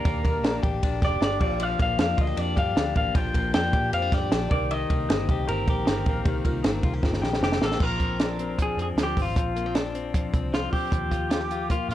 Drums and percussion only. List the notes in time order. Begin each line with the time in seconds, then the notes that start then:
0.05 kick, ride
0.25 kick, ride
0.44 snare, ride
0.63 kick, ride
0.83 kick, ride
1.02 kick, snare, ride
1.22 snare, ride
1.41 kick, crash
1.60 ride
1.80 kick, ride
1.99 snare, ride
2.18 kick, ride
2.37 ride
2.57 kick, ride
2.77 snare, ride
2.96 kick, ride
3.15 kick, ride
3.34 kick, ride
3.54 snare, ride
3.73 kick, ride
3.93 ride
4.12 kick, snare, ride
4.32 snare, ride
4.51 kick, ride
4.71 ride
4.90 kick, ride
5.10 snare, ride
5.29 kick, ride
5.48 ride
5.68 kick, ride
5.87 snare, ride
6.06 kick, ride
6.26 kick, ride
6.45 kick, ride
6.64 snare, ride
6.83 kick, ride
7.03 kick, snare
7.13 snare
7.23 snare
7.33 snare
7.43 snare
7.52 snare
7.62 snare
7.71 snare
7.80 kick, crash
8.00 kick, closed hi-hat
8.20 snare, closed hi-hat
8.39 closed hi-hat
8.59 kick, closed hi-hat
8.79 closed hi-hat
8.98 snare, closed hi-hat
9.17 kick, open hi-hat
9.36 kick, closed hi-hat
9.56 closed hi-hat
9.75 snare, closed hi-hat
9.95 closed hi-hat
10.14 kick, closed hi-hat
10.34 kick, closed hi-hat
10.54 snare, closed hi-hat
10.73 kick, open hi-hat
10.92 kick, closed hi-hat
11.12 kick, closed hi-hat
11.31 snare, closed hi-hat
11.51 closed hi-hat
11.70 kick, closed hi-hat
11.91 snare, closed hi-hat